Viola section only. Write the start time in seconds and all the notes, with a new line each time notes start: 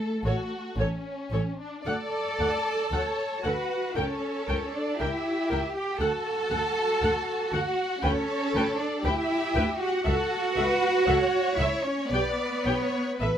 0.26 A4 C#5
0.79 A4 C#5
1.32 A4 C#5
1.86 A4 F#5
2.39 A4 F#5
2.93 A4 F#5
3.43 A4 F#5
3.96 A#4 G5
4.48 A#4 G5
5.00 A#4 G5
5.50 A#4 G5
6.01 A4 F#5
6.51 A4 F#5
7.01 A4 F#5
7.53 A4 F#5
8.03 B4 G5
8.55 B4 G5
9.05 B4 G5
9.55 B4 G5
10.04 A4 E5
10.57 A4 E5
11.07 A4 E5
11.59 A4 E5
12.13 G4 G5
12.66 G4 G5
13.20 A4 E5